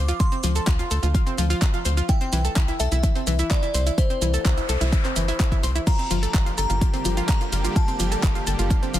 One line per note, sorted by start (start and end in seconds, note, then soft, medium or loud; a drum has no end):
0.00 0.13 D2 loud
0.00 0.15 D6 medium
0.08 0.15 F4 medium
0.08 closed hi-hat soft
0.08 shaker soft
0.20 0.27 F4 medium
0.20 2.00 C6 medium
0.20 kick loud
0.20 closed hi-hat medium
0.20 shaker soft
0.32 0.36 C4 medium
0.32 closed hi-hat soft
0.32 shaker soft
0.43 0.60 D2 loud
0.43 0.48 F3 loud
0.43 open hi-hat loud
0.43 shaker medium
0.56 0.62 A4 medium
0.56 closed hi-hat soft
0.56 shaker soft
0.67 0.84 D2 medium
0.67 0.78 F4 medium
0.67 kick loud
0.67 clap loud
0.67 closed hi-hat medium
0.67 shaker soft
0.79 0.83 F4 medium
0.79 closed hi-hat soft
0.79 shaker soft
0.91 0.99 D2 medium
0.91 0.98 A4 medium
0.91 open hi-hat loud
0.91 shaker medium
1.03 1.19 D2 medium
1.03 1.09 F4 medium
1.03 closed hi-hat soft
1.03 shaker soft
1.14 1.25 F4 medium
1.14 kick loud
1.14 closed hi-hat medium
1.14 shaker soft
1.26 1.30 C4 medium
1.26 closed hi-hat soft
1.26 shaker soft
1.38 1.55 D2 medium
1.38 1.42 F3 loud
1.38 open hi-hat loud
1.38 shaker medium
1.50 1.60 F4 loud
1.50 open hi-hat medium
1.50 shaker soft
1.62 1.72 F4 medium
1.62 kick loud
1.62 clap loud
1.62 closed hi-hat medium
1.62 shaker soft
1.74 1.78 F4 medium
1.74 closed hi-hat soft
1.74 shaker soft
1.85 2.02 D2 loud
1.85 1.92 C5 medium
1.85 open hi-hat loud
1.85 shaker medium
1.97 2.04 F4 medium
1.97 closed hi-hat soft
1.97 shaker soft
2.09 2.16 E4 medium
2.09 2.71 G5 loud
2.09 kick loud
2.09 closed hi-hat loud
2.09 shaker soft
2.21 2.25 C4 medium
2.21 closed hi-hat soft
2.21 shaker soft
2.33 2.49 C2 loud
2.33 2.37 E3 loud
2.33 open hi-hat loud
2.33 shaker medium
2.45 2.51 A4 medium
2.45 closed hi-hat soft
2.45 shaker soft
2.56 2.72 C2 medium
2.56 2.67 E4 medium
2.56 kick loud
2.56 clap loud
2.56 closed hi-hat medium
2.56 shaker soft
2.68 2.72 E4 medium
2.68 closed hi-hat soft
2.68 shaker soft
2.80 2.88 C2 medium
2.80 2.87 A4 medium
2.80 3.41 E5 medium
2.80 open hi-hat loud
2.80 shaker medium
2.92 3.08 C2 medium
2.92 2.99 E4 medium
2.92 closed hi-hat soft
2.92 shaker soft
3.03 3.14 E4 medium
3.03 kick loud
3.03 closed hi-hat loud
3.03 shaker soft
3.15 3.19 C4 medium
3.15 open hi-hat medium
3.15 shaker soft
3.27 3.43 C2 medium
3.27 3.31 E3 loud
3.27 open hi-hat loud
3.27 shaker medium
3.39 3.49 E4 loud
3.39 closed hi-hat soft
3.39 shaker soft
3.51 3.61 E4 medium
3.51 3.93 D5 medium
3.51 kick loud
3.51 clap loud
3.51 closed hi-hat medium
3.51 shaker soft
3.63 3.67 E4 medium
3.63 closed hi-hat soft
3.63 shaker soft
3.74 3.91 C2 loud
3.74 3.81 C5 medium
3.74 open hi-hat loud
3.74 shaker medium
3.87 3.93 E4 medium
3.87 closed hi-hat soft
3.87 shaker soft
3.98 4.05 E4 medium
3.98 5.78 C5 medium
3.98 kick loud
3.98 closed hi-hat loud
3.98 noise sweep medium
3.98 shaker soft
4.10 4.14 C4 medium
4.10 closed hi-hat soft
4.10 shaker soft
4.22 4.38 C2 loud
4.22 4.26 E3 loud
4.22 open hi-hat loud
4.22 shaker medium
4.34 4.40 A4 medium
4.34 closed hi-hat soft
4.34 shaker soft
4.45 4.61 C2 medium
4.45 4.56 E4 medium
4.45 kick loud
4.45 clap loud
4.45 closed hi-hat loud
4.45 shaker soft
4.57 4.61 E4 medium
4.57 closed hi-hat soft
4.57 shaker soft
4.69 4.77 C2 loud
4.69 4.76 A4 medium
4.69 open hi-hat loud
4.69 shaker medium
4.81 4.97 C2 medium
4.81 4.88 E4 medium
4.81 closed hi-hat soft
4.81 shaker soft
4.92 5.03 E4 medium
4.92 kick loud
4.92 closed hi-hat loud
4.92 shaker soft
5.05 5.09 C4 medium
5.05 clap soft
5.05 closed hi-hat soft
5.05 shaker soft
5.16 5.32 G1 medium
5.16 5.20 E3 loud
5.16 open hi-hat loud
5.16 shaker medium
5.28 5.38 E4 loud
5.28 open hi-hat medium
5.28 shaker soft
5.40 5.50 E4 medium
5.40 kick loud
5.40 clap loud
5.40 closed hi-hat loud
5.40 shaker soft
5.52 5.56 E4 medium
5.52 kick medium
5.52 closed hi-hat soft
5.52 shaker soft
5.63 5.80 C2 medium
5.63 5.70 C5 medium
5.63 open hi-hat loud
5.63 shaker medium
5.75 5.82 E4 medium
5.75 closed hi-hat soft
5.75 shaker soft
5.87 8.99 D3 medium
5.87 8.99 G3 medium
5.87 8.99 A#3 medium
5.87 5.94 F4 medium
5.87 8.99 G4 medium
5.87 6.48 A#5 loud
5.87 kick loud
5.87 closed hi-hat loud
5.87 crash medium
5.87 shaker soft
5.99 6.03 C4 medium
5.99 closed hi-hat soft
5.99 shaker soft
6.11 6.27 G1 loud
6.11 6.15 F3 loud
6.11 open hi-hat loud
6.11 shaker medium
6.23 6.29 A4 medium
6.23 closed hi-hat soft
6.23 shaker soft
6.34 6.50 G1 medium
6.34 6.45 F4 medium
6.34 kick loud
6.34 clap loud
6.34 closed hi-hat loud
6.34 shaker soft
6.46 6.50 F4 medium
6.46 closed hi-hat soft
6.46 shaker soft
6.58 6.66 G1 medium
6.58 6.65 A4 medium
6.58 7.19 A#5 medium
6.58 open hi-hat loud
6.58 shaker medium
6.70 6.86 G1 medium
6.70 6.76 F4 medium
6.70 closed hi-hat soft
6.70 shaker soft
6.81 6.92 F4 medium
6.81 kick loud
6.81 closed hi-hat loud
6.81 shaker soft
6.94 6.97 C4 medium
6.94 open hi-hat medium
6.94 shaker soft
7.05 7.21 G1 medium
7.05 7.09 F3 loud
7.05 open hi-hat loud
7.05 shaker medium
7.17 7.27 F4 loud
7.17 closed hi-hat soft
7.17 shaker soft
7.29 7.39 F4 medium
7.29 7.71 A#5 medium
7.29 kick loud
7.29 clap loud
7.29 closed hi-hat medium
7.29 shaker soft
7.41 7.45 F4 medium
7.41 closed hi-hat soft
7.41 shaker soft
7.52 7.69 G1 loud
7.52 7.59 F4 medium
7.52 open hi-hat loud
7.52 shaker medium
7.64 7.71 F4 medium
7.64 closed hi-hat soft
7.64 shaker soft
7.76 7.83 F4 medium
7.76 8.99 A5 medium
7.76 kick loud
7.76 closed hi-hat loud
7.76 shaker soft
7.88 7.92 C4 medium
7.88 closed hi-hat soft
7.88 shaker soft
8.00 8.16 G1 loud
8.00 8.04 F3 loud
8.00 open hi-hat loud
8.00 shaker medium
8.12 8.18 A4 medium
8.12 closed hi-hat soft
8.12 shaker soft
8.23 8.39 G1 medium
8.23 8.34 F4 medium
8.23 kick loud
8.23 clap loud
8.23 closed hi-hat medium
8.23 shaker soft
8.35 8.39 F4 medium
8.35 closed hi-hat soft
8.35 shaker soft
8.47 8.55 G1 loud
8.47 8.54 A4 medium
8.47 open hi-hat loud
8.47 shaker medium
8.59 8.75 G1 medium
8.59 8.66 F4 medium
8.59 closed hi-hat soft
8.59 shaker soft
8.70 8.81 F4 medium
8.70 kick loud
8.70 closed hi-hat medium
8.70 shaker soft
8.82 8.86 C4 medium
8.82 closed hi-hat soft
8.82 shaker soft
8.94 8.99 G1 medium
8.94 8.98 F3 loud
8.94 open hi-hat loud
8.94 shaker medium